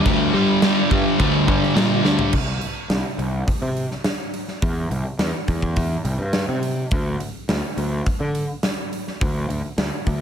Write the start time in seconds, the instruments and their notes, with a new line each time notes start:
0.05 picked electric bass D2, overdriven electric guitar G2 D3 G3, kick, crash
0.34 overdriven electric guitar G2 D3 G3, picked electric bass G3
0.62 overdriven electric guitar G2 D3 G3, snare, crash
0.90 overdriven electric guitar G2 D3 G3, picked electric bass G2, kick
1.18 picked electric bass D2, overdriven electric guitar G2 D3 G3, kick, crash
1.47 overdriven electric guitar G2 D3 G3, picked electric bass G2, kick
1.63 snare
1.75 overdriven electric guitar G2 D3 G3, picked electric bass A#2, snare, crash
2.04 picked electric bass D2, overdriven electric guitar G2 D3 G3, snare
2.19 floor tom
2.33 picked electric bass C2, kick, crash
2.61 open hi-hat
2.89 picked electric bass C2, snare, open hi-hat
3.18 picked electric bass C2, open hi-hat
3.48 kick, open hi-hat
3.62 picked electric bass C3
3.77 open hi-hat
3.91 snare
4.04 snare, open hi-hat
4.34 open hi-hat
4.48 snare
4.62 picked electric bass E2, kick, open hi-hat
4.90 picked electric bass C2, open hi-hat
5.19 picked electric bass E2, snare, open hi-hat
5.48 picked electric bass E2, kick, open hi-hat
5.62 kick
5.76 kick, open hi-hat
6.05 picked electric bass C2, open hi-hat
6.19 picked electric bass G2
6.33 snare, open hi-hat
6.48 picked electric bass C3
6.63 open hi-hat
6.91 picked electric bass D2, kick, open hi-hat
7.20 open hi-hat
7.49 picked electric bass D2, snare, open hi-hat
7.77 picked electric bass D2, open hi-hat
8.06 kick, open hi-hat
8.20 picked electric bass D3
8.35 open hi-hat
8.63 snare, open hi-hat
8.93 open hi-hat
9.08 snare
9.21 picked electric bass D2, kick, open hi-hat
9.49 picked electric bass D2, open hi-hat
9.78 picked electric bass D2, snare, open hi-hat
10.07 picked electric bass D2, kick, open hi-hat